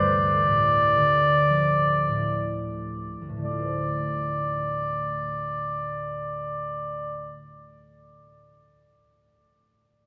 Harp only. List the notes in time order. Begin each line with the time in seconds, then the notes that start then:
Already playing: D2
0.46 A2
0.97 D3
1.50 F3
2.08 A2
3.22 D2
3.29 A2
3.36 D3
3.44 A3
3.51 F4
3.58 C5